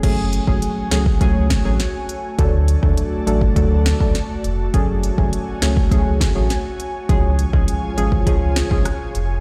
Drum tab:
CC |x---------------|----------------|----------------|----------------|
HH |x-x-x-x-x-x-x-x-|x-x-x-x-x-x-x-x-|x-x-x-x-x-x-x-x-|x-x-x-x-x-x-x-x-|
SD |------o---o-o---|----------o-o---|------o---o-o---|----------o-r---|
BD |o--o---oo-o-----|o--o---oo--o----|o--o---oo-o-----|o--o---oo--o----|